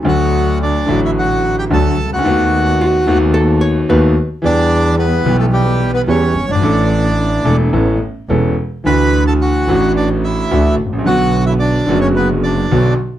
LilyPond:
<<
  \new Staff \with { instrumentName = "Hollow-body jazz guitar" } { \time 4/4 \key d \major \tempo 4 = 109 r1 | r4 fis'4 a'8 cis''8 b'8. r16 | r1 | r1 |
r1 | r1 | }
  \new Staff \with { instrumentName = "Bandoneon" } { \time 4/4 \key d \major <fis' fis''>4 <d' d''>8. <e' e''>16 <fis' fis''>8. <g' g''>16 <a' a''>8. <fis' fis''>16~ | <fis' fis''>4.~ <fis' fis''>16 r2 r16 | <d' d''>4 <b b'>8. <a a'>16 <g g'>8. <b b'>16 <cis' cis''>8. <d' d''>16~ | <d' d''>4.~ <d' d''>16 r2 r16 |
<b' b''>8. <a' a''>16 <fis' fis''>4 <d' d''>8 <e' e''>4 r8 | <fis' fis''>8. <e' e''>16 <d' d''>8. <cis' cis''>16 <b b'>8 <d' d''>4 r8 | }
  \new Staff \with { instrumentName = "Grand piano" } { \clef bass \time 4/4 \key d \major <d, d fis a fis'>4. <a,, a, d fis a fis'>4. <d, d fis a fis'>8 r32 c,32 cis,32 d,32 | <dis, dis a b fis'>4. <dis, dis a b fis'>4. <dis, dis a b fis'>8 r8 | <e, e g b g'>4. <b,, b, e g b g'>4. <e, e g b g'>8 r32 fis,,32 g,,32 gis,,32 | <a,, a, e a d' a'>4. <e,, e, e a d' a'>8 <a,, a, e b cis' a'>8 r8 <e,, e, e b cis' a'>8 r8 |
<d, d e a d' fis'>4. <a,, a, e a d' fis'>4. <d, d e a d' fis'>8 r32 gis,,32 a,,32 bes,,32 | <b,, b, d fis b fis'>4. <fis,, fis, d fis b fis'>4. <b,, b, d fis b fis'>8 r8 | }
  \new Staff \with { instrumentName = "Double bass" } { \clef bass \time 4/4 \key d \major d,4. a,,4. d,8 cis,8 | dis,4. dis,4. dis,8 r8 | e,4. b,,4. e,8 g,,8 | a,,4. e,,8 a,,8 r8 e,,8 r8 |
d,4. a,,4. d,8 a,,8 | b,,4. fis,,4. b,,8 r8 | }
>>